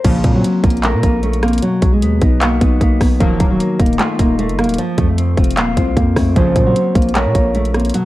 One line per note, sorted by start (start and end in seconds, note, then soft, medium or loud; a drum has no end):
0.05 0.24 A#1 loud
0.05 0.42 F2 loud
0.05 0.42 A#2 medium
0.05 0.42 C#3 loud
0.05 0.33 F3 medium
0.05 1.03 A#3 loud
0.05 kick loud
0.05 closed hi-hat medium
0.05 crash loud
0.24 0.43 A#2 loud
0.24 1.23 C4 medium
0.24 kick loud
0.24 closed hi-hat medium
0.35 0.62 F#3 medium
0.44 1.22 C#4 medium
0.44 closed hi-hat medium
0.64 0.95 A#1 loud
0.64 0.82 A#3 medium
0.64 1.02 F4 medium
0.64 kick loud
0.64 closed hi-hat medium
0.70 closed hi-hat medium
0.77 closed hi-hat soft
0.83 1.02 A3 medium
0.83 1.62 A#4 loud
0.83 clap loud
0.83 closed hi-hat medium
0.94 1.03 A#2 loud
1.03 1.60 A#1 loud
1.03 1.22 A#3 medium
1.03 1.62 F4 medium
1.03 kick medium
1.03 closed hi-hat loud
1.23 1.42 A3 medium
1.23 1.63 C#4 medium
1.23 closed hi-hat medium
1.33 closed hi-hat medium
1.43 1.61 A#3 medium
1.43 1.63 C4 medium
1.43 cross-stick loud
1.43 closed hi-hat soft
1.48 closed hi-hat medium
1.53 closed hi-hat medium
1.58 closed hi-hat medium
1.62 2.61 B2 medium
1.62 1.91 F#3 medium
1.62 closed hi-hat medium
1.82 2.03 B1 loud
1.82 2.81 F#3 medium
1.82 kick loud
1.82 closed hi-hat medium
1.93 2.20 G#3 medium
2.02 2.21 D#2 loud
2.02 2.80 B3 medium
2.02 closed hi-hat medium
2.21 2.60 B1 loud
2.21 2.40 B3 medium
2.21 2.60 D#4 medium
2.21 kick loud
2.21 closed hi-hat medium
2.41 2.60 A#3 medium
2.41 3.20 F#4 loud
2.41 clap loud
2.41 closed hi-hat medium
2.61 2.80 B1 loud
2.61 2.80 B3 medium
2.61 3.20 D#4 medium
2.61 kick medium
2.61 closed hi-hat loud
2.81 3.00 B1 loud
2.81 2.99 A#3 medium
2.81 3.20 B3 medium
2.81 kick medium
2.81 closed hi-hat medium
3.01 3.20 B1 loud
3.01 3.20 F#3 medium
3.01 3.19 B3 medium
3.01 kick medium
3.01 cross-stick medium
3.01 open hi-hat medium
3.20 3.39 D#1 loud
3.20 3.58 A#2 loud
3.20 4.19 D#3 loud
3.20 3.49 F3 medium
3.20 3.58 F#3 loud
3.20 3.58 A#3 loud
3.20 kick loud
3.20 closed hi-hat medium
3.40 3.59 D#1 loud
3.40 4.39 F#3 medium
3.40 kick loud
3.40 closed hi-hat medium
3.51 3.78 F#3 medium
3.60 4.37 A#3 loud
3.60 closed hi-hat medium
3.79 3.98 D#1 loud
3.79 3.98 A#3 medium
3.79 4.18 D#4 medium
3.79 kick loud
3.79 closed hi-hat medium
3.86 closed hi-hat medium
3.93 closed hi-hat soft
3.99 4.18 A3 medium
3.99 4.78 F4 loud
3.99 clap loud
3.99 closed hi-hat medium
4.19 4.51 D#1 loud
4.19 4.38 A#3 medium
4.19 4.78 D#4 medium
4.19 kick medium
4.19 closed hi-hat loud
4.39 4.57 A3 loud
4.39 4.78 A#3 loud
4.39 closed hi-hat medium
4.49 4.65 F#1 loud
4.49 closed hi-hat medium
4.58 4.78 F#3 medium
4.58 4.77 A#3 medium
4.58 cross-stick loud
4.58 closed hi-hat soft
4.64 4.77 D#1 loud
4.64 closed hi-hat medium
4.69 closed hi-hat medium
4.74 closed hi-hat medium
4.78 5.77 F3 medium
4.78 5.07 F3 loud
4.78 closed hi-hat medium
4.98 5.36 F2 loud
4.98 5.96 A3 medium
4.98 kick loud
4.98 closed hi-hat medium
5.08 5.36 A3 medium
5.18 5.77 C4 medium
5.18 closed hi-hat medium
5.37 5.59 F1 loud
5.37 5.56 C4 medium
5.37 5.76 F4 medium
5.37 kick loud
5.37 closed hi-hat soft
5.44 closed hi-hat medium
5.51 closed hi-hat medium
5.57 5.76 D#1 loud
5.57 5.76 A#3 medium
5.57 6.36 F5 loud
5.57 clap loud
5.57 closed hi-hat medium
5.77 5.96 C2 loud
5.77 5.95 C4 medium
5.77 6.36 F4 medium
5.77 kick medium
5.77 closed hi-hat loud
5.97 6.16 F2 loud
5.97 6.15 A#3 medium
5.97 6.36 C4 medium
5.97 kick loud
5.97 closed hi-hat medium
6.16 6.35 F2 loud
6.16 6.36 A3 medium
6.16 6.35 C4 medium
6.16 kick medium
6.16 cross-stick loud
6.16 open hi-hat medium
6.36 6.55 A#1 loud
6.36 6.74 F2 loud
6.36 6.74 A#2 medium
6.36 6.74 C#3 loud
6.36 6.65 F3 medium
6.36 7.35 A#3 loud
6.36 7.11 C5 loud
6.36 kick loud
6.36 closed hi-hat medium
6.56 6.75 A#2 loud
6.56 7.55 C4 medium
6.56 kick loud
6.56 closed hi-hat medium
6.66 6.94 F#3 medium
6.76 7.53 C#4 medium
6.76 closed hi-hat medium
6.95 7.27 A#1 loud
6.95 7.14 A#3 medium
6.95 7.34 F4 medium
6.95 kick loud
6.95 closed hi-hat medium
7.02 closed hi-hat medium
7.09 closed hi-hat soft
7.15 7.34 A3 medium
7.15 7.94 A#4 loud
7.15 7.90 C#5 medium
7.15 clap loud
7.15 closed hi-hat medium
7.26 7.34 A#2 loud
7.35 7.92 A#1 loud
7.35 7.53 A#3 medium
7.35 7.94 F4 medium
7.35 kick medium
7.35 closed hi-hat loud
7.55 7.73 A3 medium
7.55 7.94 C#4 medium
7.55 closed hi-hat medium
7.65 closed hi-hat medium
7.74 7.93 A#3 medium
7.74 7.94 C4 medium
7.74 cross-stick medium
7.74 closed hi-hat soft
7.80 closed hi-hat medium
7.85 closed hi-hat medium
7.90 closed hi-hat medium
7.94 8.05 B2 medium
7.94 8.05 F#3 loud
7.94 closed hi-hat medium